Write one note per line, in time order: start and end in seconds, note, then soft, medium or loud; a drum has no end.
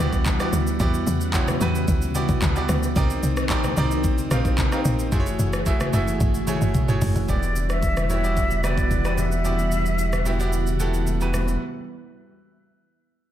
0.00 0.49 D2 medium
0.00 2.92 E3 medium
0.00 2.92 G3 medium
0.00 0.40 B3 loud
0.00 0.78 D4 medium
0.00 0.40 E4 medium
0.00 0.40 F#4 medium
0.00 0.40 G4 medium
0.00 0.41 D5 loud
0.00 2.98 E5 loud
0.00 2.92 F#5 medium
0.13 kick loud
0.13 shaker medium
0.26 kick medium
0.26 clap loud
0.26 high conga medium
0.26 shaker medium
0.40 0.72 B3 medium
0.40 0.72 E4 medium
0.40 0.72 F#4 medium
0.40 0.72 G4 medium
0.40 0.72 D5 loud
0.40 cross-stick medium
0.40 shaker medium
0.53 0.78 D2 medium
0.53 high conga medium
0.53 shaker loud
0.67 shaker medium
0.80 1.05 E2 loud
0.80 2.94 C#3 medium
0.80 1.23 B3 loud
0.80 1.24 E4 medium
0.80 1.24 F#4 medium
0.80 1.24 G4 medium
0.80 1.24 D5 loud
0.80 kick loud
0.80 low conga medium
0.80 shaker medium
0.94 shaker medium
1.07 1.57 E2 loud
1.07 high conga medium
1.07 shaker medium
1.21 shaker medium
1.34 1.56 B3 medium
1.34 1.56 E4 medium
1.34 1.56 F#4 medium
1.34 1.56 G4 medium
1.34 1.56 C#5 medium
1.34 kick loud
1.34 clap loud
1.34 shaker medium
1.48 cross-stick loud
1.48 high conga medium
1.48 shaker medium
1.61 1.86 E2 loud
1.61 2.04 B3 loud
1.61 2.05 E4 medium
1.61 2.05 F#4 medium
1.61 2.05 G4 medium
1.61 2.05 B4 loud
1.61 low conga medium
1.61 shaker medium
1.75 shaker medium
1.88 2.26 D2 loud
1.88 kick loud
1.88 shaker medium
2.02 high conga medium
2.02 shaker medium
2.15 2.47 B3 medium
2.15 2.48 E4 medium
2.15 2.48 F#4 medium
2.15 2.48 G4 medium
2.15 2.48 D5 loud
2.15 high conga medium
2.15 shaker medium
2.29 2.41 B1 medium
2.29 kick loud
2.29 shaker medium
2.42 2.67 D2 loud
2.42 kick medium
2.42 clap loud
2.42 high conga medium
2.42 shaker medium
2.56 2.88 B3 medium
2.56 2.88 E4 medium
2.56 2.88 F#4 medium
2.56 2.89 G4 medium
2.56 2.89 D5 loud
2.56 shaker medium
2.69 2.94 D2 medium
2.69 cross-stick loud
2.69 high conga medium
2.69 shaker loud
2.83 shaker medium
2.96 3.21 C2 loud
2.96 5.10 D#3 medium
2.96 5.10 A#3 medium
2.96 3.40 C4 loud
2.96 5.10 C4 medium
2.96 3.40 D#4 medium
2.96 5.10 D#4 medium
2.96 3.40 G4 medium
2.96 3.40 A#4 medium
2.96 3.40 D5 loud
2.96 kick loud
2.96 low conga medium
2.96 shaker medium
3.10 shaker medium
3.23 3.73 C2 medium
3.23 high conga medium
3.23 shaker medium
3.37 cross-stick loud
3.37 shaker medium
3.50 3.72 C4 medium
3.50 3.72 D#4 medium
3.50 3.72 G4 medium
3.50 3.72 A#4 medium
3.50 3.72 D5 medium
3.50 kick loud
3.50 clap loud
3.50 shaker medium
3.64 cross-stick medium
3.64 high conga medium
3.64 shaker medium
3.77 4.27 C2 loud
3.77 4.21 C4 loud
3.77 4.21 D#4 medium
3.77 4.21 G4 medium
3.77 4.21 A#4 medium
3.77 4.21 D5 loud
3.77 low conga medium
3.77 shaker medium
3.91 shaker medium
4.04 kick loud
4.04 shaker medium
4.18 high conga medium
4.18 shaker medium
4.31 4.81 A#1 loud
4.31 4.64 C4 loud
4.31 4.64 D#4 medium
4.31 4.64 G4 medium
4.31 4.64 A#4 medium
4.31 4.64 F5 loud
4.31 cross-stick loud
4.31 high conga medium
4.31 shaker medium
4.45 kick loud
4.45 shaker soft
4.58 kick medium
4.58 clap loud
4.58 high conga medium
4.58 shaker medium
4.72 5.04 C4 medium
4.72 5.05 D#4 medium
4.72 5.05 G4 medium
4.72 5.05 A#4 medium
4.72 5.05 F5 loud
4.72 cross-stick medium
4.72 shaker medium
4.85 5.10 A#1 loud
4.85 high conga medium
4.85 shaker medium
4.99 shaker medium
5.12 5.37 F#1 loud
5.12 7.26 E3 medium
5.12 5.56 A3 loud
5.12 7.26 A3 medium
5.12 5.56 E4 medium
5.12 7.26 F#4 medium
5.12 5.56 F#4 medium
5.12 7.26 G#4 medium
5.12 5.56 G#4 medium
5.12 5.19 C5 medium
5.12 kick loud
5.12 low conga medium
5.12 shaker medium
5.20 5.60 C#5 loud
5.26 shaker medium
5.39 5.89 F#1 loud
5.39 high conga medium
5.39 shaker medium
5.53 cross-stick loud
5.53 shaker medium
5.66 5.88 A3 medium
5.66 5.88 E4 medium
5.66 5.88 F#4 medium
5.66 5.88 G#4 medium
5.66 5.89 E5 loud
5.66 kick loud
5.66 shaker medium
5.80 cross-stick loud
5.80 high conga medium
5.80 shaker medium
5.93 6.18 F#1 loud
5.93 6.37 A3 loud
5.93 6.37 E4 medium
5.93 6.37 F#4 medium
5.93 6.37 G#4 medium
5.93 6.38 E5 loud
5.93 low conga medium
5.93 shaker medium
6.08 shaker medium
6.20 6.58 G1 loud
6.20 kick loud
6.20 high tom medium
6.20 shaker medium
6.34 high conga medium
6.34 shaker medium
6.47 6.80 A3 loud
6.47 6.80 E4 medium
6.47 6.80 F#4 medium
6.47 6.80 G#4 medium
6.47 6.80 C#5 loud
6.47 mid tom medium
6.47 high conga medium
6.47 shaker medium
6.61 6.73 F#1 medium
6.61 shaker medium
6.74 kick medium
6.74 mid tom loud
6.74 high conga medium
6.74 shaker medium
6.88 7.00 G1 medium
6.88 7.21 A3 medium
6.88 7.21 E4 medium
6.88 7.21 F#4 medium
6.88 7.21 G#4 medium
6.88 7.21 C#5 loud
6.88 mid tom medium
6.88 shaker medium
7.01 7.14 G1 loud
7.01 floor tom loud
7.01 open hi-hat medium
7.01 high conga medium
7.01 low conga medium
7.01 shaker medium
7.16 7.28 F#1 medium
7.16 floor tom loud
7.16 shaker medium
7.28 11.57 E1 medium
7.28 11.57 E3 medium
7.28 11.57 G3 medium
7.28 7.94 B3 medium
7.28 9.43 D4 medium
7.28 7.94 E4 medium
7.28 7.94 F#4 medium
7.28 7.94 G4 medium
7.28 7.94 D5 medium
7.28 7.67 D5 loud
7.28 11.57 F#5 medium
7.28 kick loud
7.28 low conga medium
7.28 shaker medium
7.43 shaker medium
7.55 high conga medium
7.55 shaker medium
7.70 8.07 E5 loud
7.70 cross-stick medium
7.70 shaker medium
7.83 kick medium
7.83 shaker medium
7.96 cross-stick medium
7.96 high conga medium
7.96 shaker medium
8.09 8.21 B3 medium
8.09 8.21 E4 medium
8.09 8.21 F#4 medium
8.09 8.21 G4 medium
8.09 8.21 C#5 medium
8.09 8.66 E5 loud
8.09 low conga medium
8.09 shaker medium
8.23 8.56 B3 medium
8.23 8.56 E4 medium
8.23 8.56 F#4 medium
8.23 8.56 G4 medium
8.23 8.56 D5 medium
8.23 shaker soft
8.37 kick loud
8.37 shaker medium
8.51 high conga medium
8.51 shaker medium
8.63 8.96 B3 medium
8.63 8.96 E4 medium
8.63 8.96 F#4 medium
8.63 8.97 G4 medium
8.63 8.97 B4 medium
8.63 9.20 D5 loud
8.63 cross-stick medium
8.63 high conga medium
8.63 shaker medium
8.78 kick medium
8.78 shaker soft
8.91 kick medium
8.91 high conga medium
8.91 shaker medium
9.04 9.37 B3 medium
9.04 9.37 E4 medium
9.04 9.37 F#4 medium
9.04 9.37 G4 medium
9.04 9.37 B4 medium
9.04 cross-stick medium
9.04 shaker soft
9.18 11.07 E5 loud
9.18 high conga medium
9.18 low conga medium
9.18 shaker medium
9.32 shaker medium
9.44 11.59 C#3 medium
9.44 10.10 B3 medium
9.44 10.10 E4 medium
9.44 10.10 F#4 medium
9.44 10.10 G4 medium
9.44 10.10 D5 medium
9.44 low conga medium
9.44 shaker medium
9.59 shaker soft
9.72 high conga medium
9.72 shaker medium
9.86 shaker medium
9.99 shaker medium
10.13 cross-stick medium
10.13 high conga medium
10.13 shaker medium
10.25 10.37 B3 medium
10.25 10.37 E4 medium
10.25 10.37 F#4 medium
10.25 10.37 G4 medium
10.25 10.37 E5 loud
10.25 low conga medium
10.25 shaker medium
10.39 10.72 B3 medium
10.39 10.72 E4 medium
10.39 10.72 F#4 medium
10.39 10.72 G4 medium
10.39 10.72 D5 medium
10.39 shaker soft
10.53 shaker medium
10.67 high conga soft
10.67 shaker medium
10.79 11.12 B3 medium
10.79 11.12 E4 medium
10.79 11.13 F#4 medium
10.79 11.13 G4 medium
10.79 11.13 A4 loud
10.79 high conga medium
10.79 shaker medium
10.94 shaker soft
11.07 high conga medium
11.07 shaker medium
11.21 11.53 B3 medium
11.21 11.53 E4 medium
11.21 11.53 F#4 medium
11.21 11.53 G4 medium
11.21 11.54 B4 medium
11.21 shaker soft
11.34 cross-stick medium
11.34 high conga medium
11.34 low conga medium
11.34 shaker medium
11.48 shaker soft